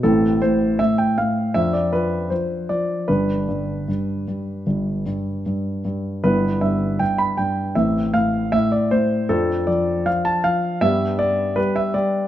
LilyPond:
<<
  \new Staff \with { instrumentName = "Grand piano" } { \time 4/4 \key g \mixolydian \tempo 4 = 78 << { a'8 c''8 e''16 g''16 f''8 e''16 d''16 b'8 c''8 d''8 | b'2.~ b'8 r8 | b'8 e''8 g''16 b''16 g''8 e''8 f''8 e''16 d''16 c''8 | a'8 d''8 f''16 a''16 f''8 e''8 d''8 b'16 e''16 d''8 | } \\ { <c' e'>2 d'2 | d'1 | <b e'>2 <c' e'>2 | d'2 <b d'>2 | } >> }
  \new Staff \with { instrumentName = "Grand piano" } { \clef bass \time 4/4 \key g \mixolydian <a,, a,>8 a,8 a,8 a,8 <f, f>8 f8 f8 f8 | <g,, g,>8 g,8 g,8 g,8 <g,, g,>8 g,8 g,8 g,8 | <g,, g,>8 g,8 g,8 g,8 <a,, a,>8 a,8 a,8 a,8 | <f, f>8 f8 f8 f8 <g, g>8 g8 g8 g8 | }
>>